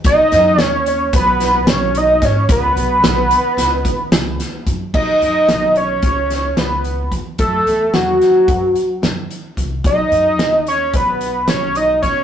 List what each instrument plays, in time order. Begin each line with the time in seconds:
0.04 upright bass B1, analog synth lead D#5, kick, closed hi-hat
0.32 upright bass F#2, snare, closed hi-hat
0.59 upright bass D#2, analog synth lead C#5, snare, closed hi-hat
0.86 analog synth lead C#5, closed hi-hat
1.13 upright bass B1, analog synth lead B4, kick, closed hi-hat
1.40 snare, closed hi-hat
1.67 upright bass B1, analog synth lead C#5, snare, closed hi-hat
1.95 analog synth lead D#5, closed hi-hat
2.22 upright bass G#2, analog synth lead C#5, kick, snare, closed hi-hat
2.49 upright bass C#2, analog synth lead B4, kick, closed hi-hat
2.76 upright bass B1, closed hi-hat
3.03 upright bass B1, snare, closed hi-hat
3.31 closed hi-hat
3.57 upright bass C#2, snare, closed hi-hat
3.85 kick, closed hi-hat
4.12 upright bass C#2, snare, closed hi-hat
4.40 snare, closed hi-hat
4.67 upright bass F#2, kick, closed hi-hat
4.94 upright bass B1, analog synth lead D#5, kick, crash
5.21 upright bass F#2, closed hi-hat
5.49 upright bass B1, snare, closed hi-hat
5.76 analog synth lead C#5, closed hi-hat
6.02 upright bass C#2, kick, closed hi-hat
6.30 snare, closed hi-hat
6.57 upright bass C#2, analog synth lead B4, snare, closed hi-hat
6.84 closed hi-hat
7.12 upright bass E2, kick, closed hi-hat
7.38 upright bass F#2, analog synth lead A4, kick, closed hi-hat
7.66 upright bass E2, closed hi-hat
7.94 upright bass E2, analog synth lead F#4, snare, closed hi-hat
8.21 snare, closed hi-hat
8.48 upright bass F#2, kick, closed hi-hat
8.75 closed hi-hat
9.02 upright bass F#2, snare, closed hi-hat
9.31 closed hi-hat
9.57 upright bass C2, kick, closed hi-hat
9.84 upright bass B1, analog synth lead D#5, kick, closed hi-hat
10.11 upright bass F#2, closed hi-hat
10.38 upright bass D#2, snare, closed hi-hat
10.67 analog synth lead C#5, closed hi-hat
10.93 upright bass B1, analog synth lead B4, kick, closed hi-hat
11.21 closed hi-hat
11.48 upright bass B1, analog synth lead C#5, snare, closed hi-hat
11.75 analog synth lead D#5, closed hi-hat
12.02 upright bass B2, analog synth lead C#5, kick, closed hi-hat